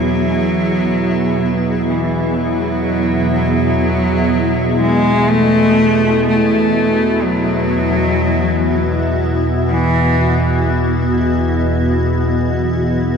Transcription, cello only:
0.00 1.85 F#3 loud
1.87 2.36 E3 medium
2.35 3.33 F#3 medium
3.33 4.76 F#3 medium
4.80 5.31 G#3 loud
5.29 6.27 A3 loud
6.28 7.25 A3 loud
7.23 9.21 F#3 medium
9.69 10.65 E3 loud

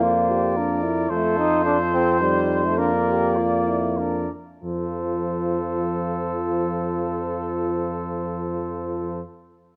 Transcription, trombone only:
0.00 0.81 A#3 medium
1.10 1.39 A3 medium
1.38 1.65 D#4 medium
1.65 1.78 D4 medium
1.93 2.20 C4 medium
2.21 2.67 G3 medium
2.65 2.80 A3 soft
2.78 4.31 A#3 medium
4.63 9.21 F3 soft

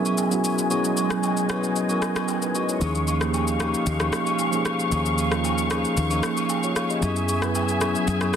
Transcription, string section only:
0.00 2.77 F#3 medium
0.00 6.98 G#3 medium
0.00 0.69 E5 medium
0.00 2.77 G#5 medium
0.71 2.79 D#5 medium
2.81 6.98 F5 medium
2.81 6.98 C#6 medium
7.02 8.36 G#4 medium
7.02 8.36 E5 medium
7.02 8.36 G#5 medium

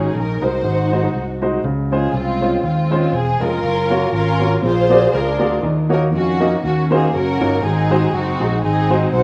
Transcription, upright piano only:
0.00 0.38 G#2 medium
0.42 0.58 G#3 medium
0.42 0.59 D#4 medium
0.42 0.59 F#4 medium
0.42 0.59 A#4 medium
0.64 1.38 G#2 medium
0.92 1.00 G#3 medium
0.92 1.01 D#4 medium
0.92 1.01 F#4 medium
0.92 1.01 C5 medium
1.03 1.21 G#3 medium
1.03 1.21 D#4 medium
1.03 1.21 F#4 medium
1.03 1.21 C5 medium
1.42 1.58 G#3 medium
1.42 1.58 D#4 medium
1.42 1.59 F#4 medium
1.42 1.59 C5 medium
1.64 2.38 C#3 medium
1.92 2.08 G#3 medium
1.92 2.08 C#4 medium
1.92 2.09 F4 medium
1.92 2.09 C5 medium
2.41 2.58 G#3 medium
2.41 2.58 C#4 medium
2.41 2.58 F4 medium
2.41 2.58 C5 medium
2.91 3.08 G#3 medium
2.91 3.08 C#4 medium
2.91 3.08 F4 medium
2.91 3.08 C5 medium
3.40 3.57 G#3 medium
3.40 3.58 C#4 medium
3.40 3.58 F4 medium
3.40 3.58 A#4 medium
3.90 4.07 A#3 medium
3.90 4.07 F4 medium
3.90 4.07 F#4 medium
3.90 4.08 C#5 medium
4.40 4.57 A#3 medium
4.40 4.57 F4 medium
4.40 4.57 F#4 medium
4.40 4.58 C#5 medium
4.62 5.36 A#2 medium
4.89 5.07 A#3 medium
4.89 5.07 F#4 medium
4.89 5.07 G#4 medium
4.89 5.07 D5 medium
5.39 5.57 A#3 medium
5.39 5.57 F#4 medium
5.39 5.57 G#4 medium
5.39 5.57 D5 medium
5.62 6.36 D#3 medium
5.89 6.07 A#3 medium
5.89 6.07 D#4 medium
5.89 6.07 F#4 medium
5.89 6.07 C#5 medium
6.40 6.57 A#3 medium
6.40 6.57 D#4 medium
6.40 6.57 F#4 medium
6.40 6.57 D#5 medium
6.91 7.07 A#3 medium
6.91 7.07 D#4 medium
6.91 7.07 F#4 medium
6.91 7.08 C5 medium
7.41 7.57 A#3 medium
7.41 7.57 D#4 medium
7.41 7.57 F#4 medium
7.41 7.57 C#5 medium
7.63 8.36 G#2 medium
7.91 8.07 G#3 medium
7.91 8.07 D#4 medium
7.91 8.07 F#4 medium
7.91 8.07 C5 medium
8.40 8.56 G#3 medium
8.40 8.57 D#4 medium
8.40 8.57 F#4 medium
8.40 8.57 G#4 medium
8.90 9.06 G#3 medium
8.90 9.07 D#4 medium
8.90 9.07 F#4 medium
8.90 9.07 C5 medium

